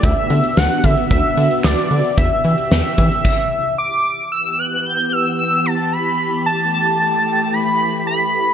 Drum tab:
CC |----------------|--------x-------|----------------|----------------|
HH |x-xxx-xxx-xxx-ox|x-xxx-xx--------|----------------|----------------|
CP |------------x---|----------------|----------------|----------------|
SD |----o-------o---|----o-----------|----------------|----------------|
BD |o-----o-o-------|o-----o-o-------|----------------|----------------|